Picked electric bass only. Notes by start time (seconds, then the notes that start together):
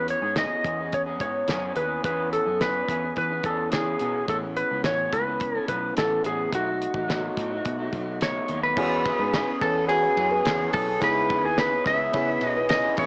Already playing: E2
0.22 G#2
0.64 E2
1.20 G#2
1.48 F#2
1.76 D#2
2.04 E2
2.46 F#2
2.89 E2
3.17 E3
3.44 E2
3.72 E3
4.01 B2
4.28 A1
4.71 C#2
4.85 A1
5.12 C#2
5.68 B1
5.97 A1
6.25 A1
6.53 B1
6.94 A1
7.37 A2
7.66 B2
7.93 B1
8.49 D#2
8.77 E2
9.19 G#2
9.62 E2
10.17 F#2
10.45 E2
10.74 B1
11.01 C#2
11.43 D#2
11.86 C#2
12.14 C#3
12.41 B2
12.98 A1